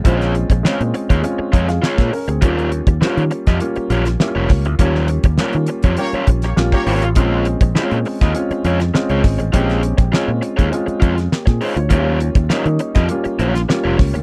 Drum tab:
HH |xxxx-xxxx-xx-xox|xxxx-xxxxxxx--ox|x-xx-xxxxxxx--ox|x-xx-xoxxxxx-xox|
SD |-o--o------ooo--|----o--o---oo-o-|-o--o------ooo--|----o--o---oo-o-|
BD |o--o---o--o--o--|o--o---o------o-|o--o---o--o--o--|o--o---o------o-|

HH |xxxx--xxxxxx-xox|x-xx-xxxxxxx--ox|
SD |-o--o------ooo--|----o--o---oo-o-|
BD |o--o---o--o--o--|o--o---o------o-|